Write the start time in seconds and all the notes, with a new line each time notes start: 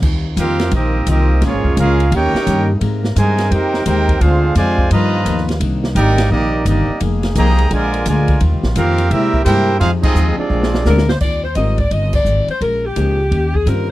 0.02 D#2 D#3 G3 C4 F4, kick, crash
0.36 F2 D#3 G3 A#3 C4 F4 G4 A#4 F5, kick, hi-hat pedal, ride
0.40 F4
0.59 snare, ride
0.71 A#1 D#3 G3 C4 F4 G4 A#4 D#5, kick, ride
0.75 A#3 D#4
1.07 C2 D#3 G3 A#3 C4 D#4 F4 G4 A#4 D#5, kick, hi-hat pedal, ride
1.41 A#1 A#2 C#3 G#3 A#3 C#4 F4, kick, snare, ride
1.45 F3 G#3 A#3 C#4 G#4 C#5
1.53 G#1
1.64 F1, kick
1.77 C#2 A#2 G#3 C#4 F4 G#4 A#4 F5, kick, hi-hat pedal, ride
2.00 ride
2.10 D#2 D#3 G3 A#3 C#4 D#4 G4, kick, ride
2.14 A#3 C#4 D#4 G4 A#4 C#5 G5
2.34 muted upright bass stroke, snare
2.46 G2 D#3 A#3 C#4 G4, kick, hi-hat pedal, ride
2.80 G#2 C3 G#3 C4 G4 A#4, kick, ride
2.84 A#4
3.04 snare
3.16 G2 C3 D#3 G#3 C4 D#4 G4 G#4 A#4 C5 G#5, kick, hi-hat pedal, ride
3.38 snare, ride
3.50 F2 G#3 C4 D#4 G4 A#4 C5 G5, kick, ride
3.74 snare
3.85 D#2 G#3 C4 D#4 G4 A#4 C5 G5, kick, hi-hat pedal, ride
4.08 kick, ride
4.19 D2 D3 G#3 C4 D4 F4 G#4 C5 F5, kick, ride
4.23 C4 F4
4.55 F2 C3 D3 F3 G#3 C4 F4 C5 D5 G#5, kick, snare, hi-hat pedal, ride
4.78 kick
4.90 G2 A#2 D#3 F3 G3 B3 D#4 F4 B4 D#5 A#5, kick, ride
4.94 F3
5.25 D#2 G2 F3 B3 D#4, kick, hi-hat pedal, ride
5.37 snare
5.49 snare, ride
5.60 C2 C3 D#3 A#3 C4 D4 D#4, kick, ride
5.84 snare
5.95 G#1 C3 D#3 A#3 D4 D#4 G4 A#4 D5 G5, kick, hi-hat pedal, ride
6.18 snare, ride
6.30 A#1 C3 D#3 G3 A#3 D4 D#4 G4 D5 D#5, kick
6.65 G1 C3 D#3 G3 A#3 D4 D#4 G4 D5 D#5, kick, hi-hat pedal, ride
6.88 muted upright bass stroke
7.00 F1 D#3 F3 G#3 A#3 D#4 G#4, kick, ride
7.23 snare, ride
7.35 C2 C3 D#3 F3 A#3 D#4 G#4 D#5 G5 A#5, kick, hi-hat pedal, ride
7.58 ride
7.70 A#1 A#2 D3 F3 G#3 D4 F4, kick, ride
7.74 F4 A#4 D5 G#5
7.94 ride
8.05 D2 A#2 D3 F3 G#3 D4 F4 A#4 D5 G#5, kick, hi-hat pedal, ride
8.28 kick, ride
8.39 D#2 D#3 G3 C4, ride
8.43 C4 F4
8.52 C2
8.63 A#1, snare
8.76 F2 D#3 G3 A#3 C4 F4 G4 A#4 F5, kick, hi-hat pedal, ride
8.98 ride
9.10 C3 G3 G#3 A#3 C4 E4 G4 A#4 E5, kick, ride
9.14 A#3 E4
9.34 kick
9.44 G2 C3 A#3 E4 G4 A#4 C5 G5, kick, hi-hat pedal, ride
9.49 G#3 A#3 E4
9.79 F2 F3 G#3 C4 D#4 F4 G#4 C5 F5, kick, ride
9.83 D#4 G#4
10.02 G#3 C4 D#4 F4 G#4 D#5, kick, crash
10.15 D#2 F3 C4 D#4 G#4, hi-hat pedal
10.37 F3 G#3 C4 D4 F4 G#4 D5, muted upright bass stroke
10.50 A#1 A#2 C3 G#3 A#3 C4 D4
10.63 snare
10.74 snare
10.85 D2 A#2 G#3 C4 D4 A#4, snare, hi-hat pedal
10.98 snare
11.09 C5, snare
11.21 D#2 D#3 G3 C4 F4 D5, kick, crash
11.44 C5
11.55 G#1 D#3 G3 C4 F4 A#4 D#5, kick, hi-hat pedal, ride
11.78 D5, kick, ride
11.90 G1 D#3 G3 C4 F4 D#5, kick, ride
12.13 D5, kick, crash
12.25 G#1 D#3 G3 C4 F4, hi-hat pedal
12.47 C5, muted upright bass stroke, ride
12.61 A#1 A#2 G#3 C#4 F4 A#4, kick, ride
12.86 G4
12.96 C#2 A#2 F3 G#3 A#3 C#4 D#4 F4 G#4, kick, hi-hat pedal, ride
13.31 D#2 D#3 A#3 C#4 G4, kick, ride
13.54 G#4, kick
13.66 G2 D#3 G3 A#3 C4 C#4 F4 G4 A#4, kick, hi-hat pedal, ride